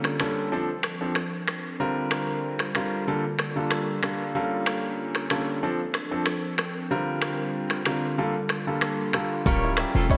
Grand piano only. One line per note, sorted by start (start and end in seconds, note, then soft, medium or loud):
0.00 0.13 D3 medium
0.00 0.13 G3 medium
0.00 0.13 A#3 medium
0.00 0.13 C#4 medium
0.00 0.13 F4 medium
0.00 0.13 A4 medium
0.20 0.50 D3 medium
0.20 0.50 G3 medium
0.20 0.50 A#3 medium
0.20 0.50 C#4 medium
0.20 0.50 F4 medium
0.20 0.50 A4 medium
0.52 0.67 F3 medium
0.52 0.68 C4 medium
0.52 0.68 D4 medium
0.52 0.68 A4 loud
1.01 1.15 F3 medium
1.01 1.15 C4 medium
1.01 1.15 D4 medium
1.01 1.15 A4 medium
1.80 2.68 D3 medium
1.80 2.68 G3 medium
1.80 2.68 C4 medium
1.80 2.69 F4 medium
1.80 2.69 A#4 loud
2.76 3.05 D3 medium
2.76 3.05 G3 medium
2.76 3.05 C4 medium
2.76 3.05 F4 medium
2.76 3.06 A#4 medium
3.07 3.23 D3 medium
3.07 3.23 G3 medium
3.07 3.23 A#3 medium
3.07 3.23 F4 medium
3.07 3.23 A4 loud
3.56 4.00 D3 medium
3.56 4.00 G3 medium
3.56 4.00 A#3 medium
3.56 4.00 F4 medium
3.56 4.00 A4 medium
4.03 4.33 D3 medium
4.03 4.33 G3 medium
4.03 4.33 A#3 medium
4.03 4.33 F4 medium
4.03 4.33 A4 medium
4.35 5.24 D3 medium
4.35 5.24 G3 medium
4.35 5.24 A#3 medium
4.35 5.24 C#4 medium
4.35 5.24 F4 medium
4.35 5.24 A4 medium
5.31 5.60 D3 medium
5.31 5.61 G3 medium
5.31 5.61 A#3 medium
5.31 5.61 C#4 medium
5.31 5.61 F4 medium
5.31 5.61 A4 medium
5.63 5.78 F3 medium
5.63 5.78 C4 medium
5.63 5.78 D4 medium
5.63 5.78 A4 loud
6.11 6.25 F3 medium
6.11 6.26 C4 medium
6.11 6.26 D4 medium
6.11 6.26 A4 medium
6.91 7.79 D3 medium
6.91 7.79 G3 medium
6.91 7.79 C4 medium
6.91 7.79 F4 medium
6.91 7.79 A#4 loud
7.86 8.16 D3 medium
7.86 8.16 G3 medium
7.86 8.16 C4 medium
7.86 8.16 F4 medium
7.86 8.16 A#4 medium
8.18 8.33 D3 medium
8.18 8.33 G3 medium
8.18 8.34 A#3 medium
8.18 8.34 F4 medium
8.18 8.34 A4 loud
8.67 9.10 D3 medium
8.67 9.11 G3 medium
8.67 9.11 A#3 medium
8.67 9.11 F4 medium
8.67 9.11 A4 medium
9.14 9.43 D3 medium
9.14 9.43 G3 medium
9.14 9.44 A#3 medium
9.14 9.44 F4 medium
9.14 9.44 A4 medium
9.46 10.17 G3 loud
9.46 10.17 C#4 medium
9.46 10.17 F4 medium
9.46 10.17 A#4 loud